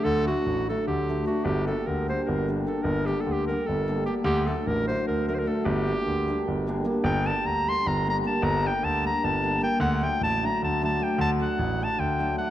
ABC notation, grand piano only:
X:1
M:7/8
L:1/8
Q:1/4=151
K:Gm
V:1 name="Grand piano" clef=bass
D,,2 A,,,2 D,,3 | G,,,2 D,,2 G,,,3 | G,,,2 D,,2 G,,,3 | D,,2 A,,,2 D,,3 |
G,,,2 D,,2 G,,,3 | G,,,2 D,,2 G,,,3 | G,,,2 D,,2 G,,,3 | D,,2 A,,,2 D,,3 |
D,,2 A,,,2 D,,3 |]